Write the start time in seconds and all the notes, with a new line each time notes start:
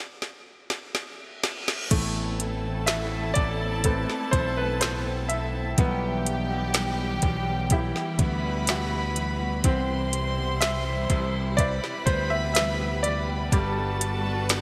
Already playing: D5, reverse cymbal
0.22 snare
0.70 snare
0.95 snare
1.44 snare
1.68 snare
1.90 A1 A2 E3 A3 B3 C4 E4 A4 A5, kick, closed hi-hat, crash
2.40 closed hi-hat
2.64 B3 C4 E4
2.86 A2 E3 B3 C4 E4 E5, snare, closed hi-hat
3.34 A1 E3 B3 C4 D5, kick, closed hi-hat
3.38 E4
3.61 B3 C4 E4
3.84 C4 A4 B4, kick, closed hi-hat
4.10 snare
4.31 B1 E3 B3 C4 C5, kick, closed hi-hat
4.36 E4
4.57 B4
4.81 A2 E3 B3 C4 E4 A4 C5, snare, closed hi-hat
5.06 B3 C4 E4
5.29 E3 B3 C4 E5, closed hi-hat
5.33 E4
5.54 B3 C4 E4
5.78 B1 B2 E3 G3 B3 G4 G5, kick, closed hi-hat
6.26 closed hi-hat
6.50 G3 B3 F#4
6.74 B2 E3 G3 B3, snare, closed hi-hat
7.22 B1 E3 G3 B3 F#4, kick, closed hi-hat
7.48 G3 B3
7.70 E4 G4 E5, kick, closed hi-hat
7.96 snare
8.18 D2 E3 G3 B3 F#4 B4 B5, kick, closed hi-hat
8.67 B2 E3 G3 B3 F#4 G4 E5, snare, closed hi-hat
8.90 G3 B3 F#4
9.15 E3 G3 B3 F#4, closed hi-hat
9.38 G3 B3 F#4
9.63 C2 C3 E3 G3 C4 E4 G4 C5 C6, kick, closed hi-hat
10.13 closed hi-hat
10.36 G3 B3 G4
10.61 C3 E3 G3 G4 E5, snare, closed hi-hat
11.09 C2 E3 G3 G4, kick, closed hi-hat
11.57 B4 C5 D5 E5 B5, kick, closed hi-hat
11.84 snare
12.06 D2 E3 G3 B3 G4 C5, kick, closed hi-hat
12.30 G3 B3 G4 E5
12.54 C3 E3 G3 B3 G4 B4 C5 E5, snare, closed hi-hat
12.79 G3 B3 G4
13.03 E3 G3 B3 G4 D5, closed hi-hat
13.28 G3 B3 G4
13.52 G1 G3 B3 D4 F#4 A4 B4 A5, kick, closed hi-hat
14.01 closed hi-hat
14.24 B3 D4 F#4
14.48 G3 B3 D4 F#4, snare, closed hi-hat